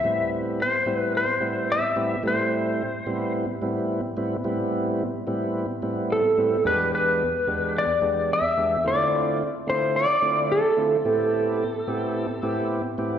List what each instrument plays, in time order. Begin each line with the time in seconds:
Already playing: electric slide guitar E5
0.04 tonewheel organ A2 G3 B3 C4 E4
0.62 electric slide guitar C5
0.86 tonewheel organ A2 G3 B3 C4 E4
0.98 electric slide guitar B4
1.17 electric slide guitar C5
1.40 tonewheel organ A2 G3 B3 C4 E4
1.72 electric slide guitar E5
1.96 tonewheel organ A2 G3 B3 C4 E4
2.23 tonewheel organ A2 G3 A3 C4 E4
2.27 electric slide guitar C5
3.06 tonewheel organ A2 G3 B3 C4 E4
3.62 tonewheel organ A2 G3 B3 C4 E4
4.17 tonewheel organ A2 G3 B3 C4 E4
4.44 tonewheel organ A2 G3 B3 C4 E4
5.27 tonewheel organ A2 G3 B3 C4 E4
5.82 tonewheel organ A2 G3 B3 C4 E4
6.12 electric slide guitar A4
6.38 tonewheel organ A2 G3 B3 C4 E4
6.64 tonewheel organ E2 G#3 B3 D4 G4, electric slide guitar B4
6.95 electric slide guitar B4
7.47 tonewheel organ E2 G#3 B3 D4 G4
7.78 electric slide guitar D5
8.01 tonewheel organ E2 G#3 B3 D4 G4
8.33 electric slide guitar E5
8.57 tonewheel organ E2 G#3 B3 D4 G4
8.84 tonewheel organ D3 A3 C4 E4 F4, electric slide guitar D5
9.67 tonewheel organ D3 A3 C4 E4 F4, electric slide guitar C5
9.96 electric slide guitar D5
10.22 tonewheel organ D3 A3 C4 E4 F4
10.52 electric slide guitar A4
10.77 tonewheel organ D3 A3 C4 E4 F4
11.05 tonewheel organ A2 B3 C4 E4 G4
11.87 tonewheel organ A2 B3 C4 E4 G4
12.43 tonewheel organ A2 B3 C4 E4 G4
12.98 tonewheel organ A2 B3 C4 E4 G4